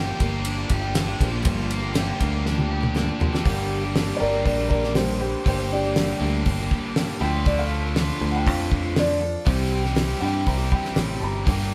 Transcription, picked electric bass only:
0, 0, Header, 1, 2, 480
1, 0, Start_track
1, 0, Tempo, 501253
1, 1379, Time_signature, 4, 2, 24, 8
1, 11245, End_track
2, 0, Start_track
2, 0, Title_t, "Picked electric bass"
2, 0, Program_c, 0, 34
2, 0, Note_on_c, 0, 31, 94
2, 109, Note_off_c, 0, 31, 0
2, 193, Note_on_c, 0, 31, 89
2, 611, Note_off_c, 0, 31, 0
2, 670, Note_on_c, 0, 31, 87
2, 1089, Note_off_c, 0, 31, 0
2, 1151, Note_on_c, 0, 34, 98
2, 1358, Note_off_c, 0, 34, 0
2, 1393, Note_on_c, 0, 31, 106
2, 2023, Note_off_c, 0, 31, 0
2, 2117, Note_on_c, 0, 38, 86
2, 2958, Note_off_c, 0, 38, 0
2, 3304, Note_on_c, 0, 31, 91
2, 3940, Note_off_c, 0, 31, 0
2, 4036, Note_on_c, 0, 31, 85
2, 4270, Note_off_c, 0, 31, 0
2, 4270, Note_on_c, 0, 34, 81
2, 5116, Note_off_c, 0, 34, 0
2, 5234, Note_on_c, 0, 31, 101
2, 5867, Note_off_c, 0, 31, 0
2, 5942, Note_on_c, 0, 38, 94
2, 6155, Note_off_c, 0, 38, 0
2, 6186, Note_on_c, 0, 31, 86
2, 6398, Note_off_c, 0, 31, 0
2, 6904, Note_on_c, 0, 38, 99
2, 7754, Note_off_c, 0, 38, 0
2, 7866, Note_on_c, 0, 38, 95
2, 8111, Note_off_c, 0, 38, 0
2, 8111, Note_on_c, 0, 41, 92
2, 8958, Note_off_c, 0, 41, 0
2, 9065, Note_on_c, 0, 36, 106
2, 9702, Note_off_c, 0, 36, 0
2, 9782, Note_on_c, 0, 43, 89
2, 9996, Note_off_c, 0, 43, 0
2, 10027, Note_on_c, 0, 36, 85
2, 10239, Note_off_c, 0, 36, 0
2, 10503, Note_on_c, 0, 33, 85
2, 10720, Note_off_c, 0, 33, 0
2, 10740, Note_on_c, 0, 31, 85
2, 10958, Note_off_c, 0, 31, 0
2, 10986, Note_on_c, 0, 31, 94
2, 11245, Note_off_c, 0, 31, 0
2, 11245, End_track
0, 0, End_of_file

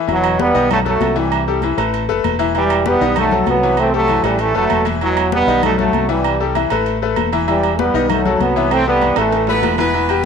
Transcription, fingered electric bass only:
0, 0, Header, 1, 2, 480
1, 0, Start_track
1, 0, Key_signature, 1, "minor"
1, 0, Tempo, 307850
1, 129, Time_signature, 4, 2, 24, 8
1, 15985, End_track
2, 0, Start_track
2, 0, Title_t, "Fingered electric bass"
2, 0, Program_c, 0, 33
2, 125, Note_on_c, 0, 28, 107
2, 798, Note_off_c, 0, 28, 0
2, 852, Note_on_c, 0, 35, 104
2, 1522, Note_off_c, 0, 35, 0
2, 1567, Note_on_c, 0, 36, 98
2, 2683, Note_off_c, 0, 36, 0
2, 2767, Note_on_c, 0, 33, 102
2, 3216, Note_off_c, 0, 33, 0
2, 3256, Note_on_c, 0, 30, 71
2, 3477, Note_off_c, 0, 30, 0
2, 3492, Note_on_c, 0, 28, 95
2, 4605, Note_off_c, 0, 28, 0
2, 4688, Note_on_c, 0, 35, 99
2, 5360, Note_off_c, 0, 35, 0
2, 5401, Note_on_c, 0, 36, 89
2, 6520, Note_off_c, 0, 36, 0
2, 6597, Note_on_c, 0, 33, 94
2, 7050, Note_off_c, 0, 33, 0
2, 7087, Note_on_c, 0, 30, 72
2, 7312, Note_off_c, 0, 30, 0
2, 7332, Note_on_c, 0, 28, 87
2, 8445, Note_off_c, 0, 28, 0
2, 8523, Note_on_c, 0, 35, 91
2, 9196, Note_off_c, 0, 35, 0
2, 9242, Note_on_c, 0, 36, 89
2, 10360, Note_off_c, 0, 36, 0
2, 10465, Note_on_c, 0, 33, 102
2, 11128, Note_off_c, 0, 33, 0
2, 11179, Note_on_c, 0, 28, 96
2, 12288, Note_off_c, 0, 28, 0
2, 12377, Note_on_c, 0, 35, 98
2, 13043, Note_off_c, 0, 35, 0
2, 13093, Note_on_c, 0, 36, 92
2, 14204, Note_off_c, 0, 36, 0
2, 14290, Note_on_c, 0, 33, 88
2, 14959, Note_off_c, 0, 33, 0
2, 14995, Note_on_c, 0, 28, 88
2, 15985, Note_off_c, 0, 28, 0
2, 15985, End_track
0, 0, End_of_file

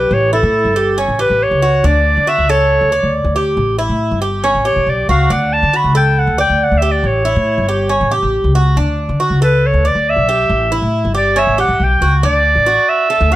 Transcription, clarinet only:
0, 0, Header, 1, 2, 480
1, 0, Start_track
1, 0, Key_signature, 2, "major"
1, 0, Tempo, 433213
1, 123, Time_signature, 4, 2, 24, 8
1, 14801, End_track
2, 0, Start_track
2, 0, Title_t, "Clarinet"
2, 0, Program_c, 0, 71
2, 0, Note_on_c, 0, 71, 75
2, 149, Note_on_c, 0, 73, 85
2, 166, Note_off_c, 0, 71, 0
2, 363, Note_off_c, 0, 73, 0
2, 370, Note_on_c, 0, 69, 89
2, 1040, Note_off_c, 0, 69, 0
2, 1329, Note_on_c, 0, 71, 89
2, 1585, Note_on_c, 0, 73, 83
2, 1602, Note_off_c, 0, 71, 0
2, 2063, Note_on_c, 0, 74, 82
2, 2079, Note_off_c, 0, 73, 0
2, 2535, Note_on_c, 0, 76, 96
2, 2552, Note_off_c, 0, 74, 0
2, 2772, Note_on_c, 0, 73, 96
2, 2788, Note_off_c, 0, 76, 0
2, 3484, Note_off_c, 0, 73, 0
2, 5165, Note_on_c, 0, 73, 87
2, 5423, Note_on_c, 0, 74, 77
2, 5439, Note_off_c, 0, 73, 0
2, 5643, Note_off_c, 0, 74, 0
2, 5649, Note_on_c, 0, 77, 82
2, 5897, Note_on_c, 0, 78, 80
2, 5914, Note_off_c, 0, 77, 0
2, 6125, Note_on_c, 0, 81, 94
2, 6142, Note_off_c, 0, 78, 0
2, 6385, Note_on_c, 0, 83, 104
2, 6401, Note_off_c, 0, 81, 0
2, 6607, Note_off_c, 0, 83, 0
2, 6613, Note_on_c, 0, 79, 91
2, 6856, Note_on_c, 0, 78, 82
2, 6873, Note_off_c, 0, 79, 0
2, 7085, Note_off_c, 0, 78, 0
2, 7092, Note_on_c, 0, 79, 106
2, 7351, Note_on_c, 0, 78, 89
2, 7368, Note_off_c, 0, 79, 0
2, 7510, Note_on_c, 0, 76, 85
2, 7526, Note_off_c, 0, 78, 0
2, 7661, Note_on_c, 0, 74, 77
2, 7678, Note_off_c, 0, 76, 0
2, 7825, Note_on_c, 0, 73, 80
2, 7841, Note_off_c, 0, 74, 0
2, 8770, Note_off_c, 0, 73, 0
2, 10448, Note_on_c, 0, 71, 93
2, 10705, Note_on_c, 0, 73, 80
2, 10722, Note_off_c, 0, 71, 0
2, 10939, Note_on_c, 0, 74, 86
2, 10956, Note_off_c, 0, 73, 0
2, 11189, Note_on_c, 0, 76, 101
2, 11206, Note_off_c, 0, 74, 0
2, 11894, Note_off_c, 0, 76, 0
2, 12369, Note_on_c, 0, 74, 87
2, 12616, Note_on_c, 0, 76, 84
2, 12633, Note_off_c, 0, 74, 0
2, 12845, Note_off_c, 0, 76, 0
2, 12852, Note_on_c, 0, 78, 88
2, 13112, Note_on_c, 0, 79, 81
2, 13129, Note_off_c, 0, 78, 0
2, 13456, Note_off_c, 0, 79, 0
2, 13568, Note_on_c, 0, 74, 100
2, 14284, Note_on_c, 0, 76, 99
2, 14301, Note_off_c, 0, 74, 0
2, 14793, Note_off_c, 0, 76, 0
2, 14801, End_track
0, 0, End_of_file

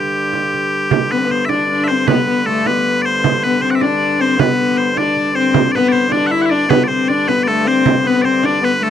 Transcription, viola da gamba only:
0, 0, Header, 1, 2, 480
1, 0, Start_track
1, 0, Key_signature, 1, "major"
1, 0, Tempo, 386100
1, 1133, Time_signature, 6, 3, 24, 8
1, 11064, End_track
2, 0, Start_track
2, 0, Title_t, "Viola da gamba"
2, 0, Program_c, 0, 42
2, 1384, Note_on_c, 0, 59, 79
2, 1455, Note_on_c, 0, 60, 67
2, 1473, Note_off_c, 0, 59, 0
2, 1549, Note_on_c, 0, 59, 77
2, 1567, Note_off_c, 0, 60, 0
2, 1858, Note_off_c, 0, 59, 0
2, 1865, Note_on_c, 0, 62, 68
2, 2084, Note_off_c, 0, 62, 0
2, 2110, Note_on_c, 0, 62, 72
2, 2357, Note_on_c, 0, 60, 72
2, 2375, Note_off_c, 0, 62, 0
2, 2587, Note_off_c, 0, 60, 0
2, 2593, Note_on_c, 0, 59, 76
2, 2809, Note_off_c, 0, 59, 0
2, 2832, Note_on_c, 0, 59, 74
2, 3049, Note_off_c, 0, 59, 0
2, 3084, Note_on_c, 0, 57, 74
2, 3315, Note_on_c, 0, 59, 65
2, 3334, Note_off_c, 0, 57, 0
2, 4028, Note_off_c, 0, 59, 0
2, 4272, Note_on_c, 0, 59, 82
2, 4490, Note_off_c, 0, 59, 0
2, 4514, Note_on_c, 0, 60, 87
2, 4758, Note_on_c, 0, 62, 77
2, 4777, Note_off_c, 0, 60, 0
2, 5220, Note_on_c, 0, 60, 86
2, 5238, Note_off_c, 0, 62, 0
2, 5460, Note_off_c, 0, 60, 0
2, 5472, Note_on_c, 0, 59, 86
2, 6136, Note_off_c, 0, 59, 0
2, 6190, Note_on_c, 0, 62, 75
2, 6631, Note_off_c, 0, 62, 0
2, 6670, Note_on_c, 0, 60, 89
2, 6888, Note_off_c, 0, 60, 0
2, 7148, Note_on_c, 0, 59, 88
2, 7589, Note_off_c, 0, 59, 0
2, 7608, Note_on_c, 0, 62, 77
2, 7851, Note_on_c, 0, 64, 90
2, 7869, Note_off_c, 0, 62, 0
2, 8091, Note_on_c, 0, 62, 89
2, 8109, Note_off_c, 0, 64, 0
2, 8324, Note_off_c, 0, 62, 0
2, 8331, Note_on_c, 0, 59, 84
2, 8556, Note_off_c, 0, 59, 0
2, 8573, Note_on_c, 0, 60, 79
2, 8821, Note_on_c, 0, 62, 86
2, 8840, Note_off_c, 0, 60, 0
2, 9049, Note_on_c, 0, 59, 78
2, 9068, Note_off_c, 0, 62, 0
2, 9287, Note_on_c, 0, 57, 85
2, 9305, Note_off_c, 0, 59, 0
2, 9521, Note_on_c, 0, 60, 95
2, 9540, Note_off_c, 0, 57, 0
2, 9766, Note_off_c, 0, 60, 0
2, 10003, Note_on_c, 0, 59, 90
2, 10242, Note_on_c, 0, 60, 87
2, 10261, Note_off_c, 0, 59, 0
2, 10484, Note_on_c, 0, 62, 82
2, 10503, Note_off_c, 0, 60, 0
2, 10718, Note_off_c, 0, 62, 0
2, 10725, Note_on_c, 0, 59, 74
2, 10833, Note_off_c, 0, 59, 0
2, 10962, Note_on_c, 0, 57, 81
2, 11064, Note_off_c, 0, 57, 0
2, 11064, End_track
0, 0, End_of_file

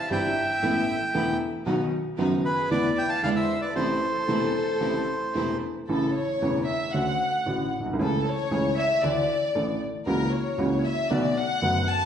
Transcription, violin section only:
0, 0, Header, 1, 2, 480
1, 0, Start_track
1, 0, Key_signature, 0, "minor"
1, 0, Tempo, 525855
1, 1521, Time_signature, 4, 2, 24, 8
1, 5375, Key_signature, 3, "major"
1, 7292, Tempo, 517241
1, 11064, End_track
2, 0, Start_track
2, 0, Title_t, "Violin section"
2, 0, Program_c, 0, 48
2, 103, Note_on_c, 0, 76, 67
2, 1253, Note_off_c, 0, 76, 0
2, 2238, Note_on_c, 0, 68, 60
2, 2461, Note_off_c, 0, 68, 0
2, 2473, Note_on_c, 0, 71, 66
2, 2698, Note_off_c, 0, 71, 0
2, 2713, Note_on_c, 0, 76, 68
2, 2826, Note_off_c, 0, 76, 0
2, 2834, Note_on_c, 0, 77, 68
2, 2946, Note_off_c, 0, 77, 0
2, 2949, Note_on_c, 0, 74, 63
2, 3004, Note_off_c, 0, 74, 0
2, 3065, Note_on_c, 0, 72, 71
2, 3292, Note_off_c, 0, 72, 0
2, 3297, Note_on_c, 0, 71, 60
2, 3410, Note_on_c, 0, 69, 73
2, 3417, Note_off_c, 0, 71, 0
2, 5082, Note_off_c, 0, 69, 0
2, 5368, Note_on_c, 0, 69, 76
2, 5595, Note_off_c, 0, 69, 0
2, 5611, Note_on_c, 0, 73, 80
2, 6059, Note_off_c, 0, 73, 0
2, 6092, Note_on_c, 0, 76, 72
2, 6320, Note_on_c, 0, 78, 79
2, 6333, Note_off_c, 0, 76, 0
2, 7046, Note_off_c, 0, 78, 0
2, 7301, Note_on_c, 0, 69, 77
2, 7522, Note_off_c, 0, 69, 0
2, 7546, Note_on_c, 0, 73, 88
2, 8013, Note_on_c, 0, 76, 94
2, 8023, Note_off_c, 0, 73, 0
2, 8247, Note_on_c, 0, 74, 86
2, 8256, Note_off_c, 0, 76, 0
2, 8974, Note_off_c, 0, 74, 0
2, 9213, Note_on_c, 0, 70, 81
2, 9438, Note_off_c, 0, 70, 0
2, 9453, Note_on_c, 0, 73, 75
2, 9936, Note_off_c, 0, 73, 0
2, 9943, Note_on_c, 0, 76, 84
2, 10180, Note_off_c, 0, 76, 0
2, 10185, Note_on_c, 0, 74, 80
2, 10420, Note_off_c, 0, 74, 0
2, 10425, Note_on_c, 0, 78, 93
2, 10893, Note_on_c, 0, 81, 90
2, 10898, Note_off_c, 0, 78, 0
2, 11064, Note_off_c, 0, 81, 0
2, 11064, End_track
0, 0, End_of_file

